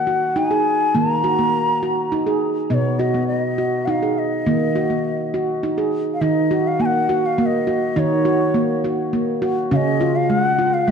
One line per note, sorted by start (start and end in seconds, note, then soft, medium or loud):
0.00 0.33 D#3 medium
0.00 0.39 F#5 medium
0.07 0.36 F#4 medium
0.36 0.51 D#4 medium
0.36 0.97 G#5 medium
0.51 0.80 G#4 medium
0.95 2.09 D#3 medium
0.95 1.24 A#3 medium
0.95 2.42 A#5 loud
1.24 1.39 F#4 medium
1.39 1.68 A#3 medium
1.83 2.12 F#4 medium
2.12 2.27 D#4 medium
2.27 2.56 G#4 medium
2.70 3.84 B2 medium
2.70 3.00 B3 medium
2.70 2.75 D#5 medium
2.74 3.01 C#5 medium
2.99 3.15 F#4 medium
2.99 3.27 D#5 medium
3.14 3.44 B3 medium
3.27 3.87 D#5 medium
3.58 3.88 F#4 medium
3.86 4.02 D#4 medium
3.86 3.91 F#5 medium
3.90 4.14 F5 medium
4.02 4.32 G#4 medium
4.14 4.20 F5 medium
4.19 5.62 D#5 medium
4.47 5.59 D#3 medium
4.47 4.76 A#3 medium
4.76 4.90 F#4 medium
4.90 5.19 A#3 medium
5.34 5.63 F#4 medium
5.63 5.78 D#4 medium
5.78 6.07 G#4 medium
6.14 6.23 F5 medium
6.21 7.34 D#3 medium
6.21 6.51 D#4 medium
6.21 6.69 D#5 medium
6.51 6.80 F#4 medium
6.67 6.83 F5 medium
6.80 7.09 A#3 medium
6.80 6.87 G#5 medium
6.86 7.27 F#5 loud
7.09 7.38 F#4 medium
7.26 7.41 F5 medium
7.38 7.67 A#3 medium
7.38 7.47 F5 medium
7.46 8.00 D#5 medium
7.67 7.96 F#4 medium
7.96 9.09 D#3 medium
7.96 8.26 D#4 medium
7.96 8.85 C#5 loud
8.25 8.55 F#4 medium
8.54 8.84 A#3 medium
8.84 9.13 F#4 medium
9.13 9.69 A#3 medium
9.42 9.71 F#4 medium
9.71 10.84 C#3 loud
9.71 10.01 C#4 medium
9.71 9.77 F5 medium
9.76 10.17 D#5 loud
10.01 10.30 F4 medium
10.16 10.32 F5 medium
10.30 10.59 G#3 medium
10.30 10.75 F#5 loud
10.59 10.88 F4 medium
10.74 10.91 F5 loud
10.88 10.91 G#3 medium